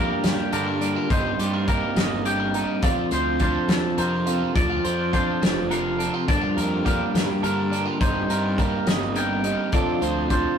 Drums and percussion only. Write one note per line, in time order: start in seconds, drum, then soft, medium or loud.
0.24 snare medium
0.24 closed hi-hat medium
0.53 closed hi-hat medium
0.81 closed hi-hat medium
1.10 kick loud
1.10 closed hi-hat medium
1.40 closed hi-hat medium
1.68 kick medium
1.68 closed hi-hat medium
1.96 snare medium
1.96 closed hi-hat medium
2.26 closed hi-hat medium
2.54 closed hi-hat medium
2.83 kick loud
2.83 closed hi-hat medium
3.11 closed hi-hat medium
3.40 kick medium
3.40 closed hi-hat medium
3.69 snare loud
3.69 closed hi-hat medium
3.98 closed hi-hat medium
4.27 closed hi-hat medium
4.56 kick loud
4.56 closed hi-hat medium
4.85 closed hi-hat medium
5.13 kick medium
5.13 closed hi-hat medium
5.43 snare loud
5.43 closed hi-hat medium
5.71 closed hi-hat medium
6.00 closed hi-hat medium
6.28 kick loud
6.28 closed hi-hat medium
6.58 closed hi-hat medium
6.86 kick medium
6.86 closed hi-hat medium
7.15 snare medium
7.15 closed hi-hat medium
7.44 closed hi-hat medium
7.73 closed hi-hat medium
8.01 kick loud
8.01 closed hi-hat medium
8.30 closed hi-hat medium
8.58 kick medium
8.58 closed hi-hat medium
8.87 snare medium
8.87 closed hi-hat medium
9.16 closed hi-hat medium
9.44 closed hi-hat medium
9.72 kick loud
9.72 closed hi-hat medium
10.02 closed hi-hat medium
10.30 kick medium
10.30 closed hi-hat medium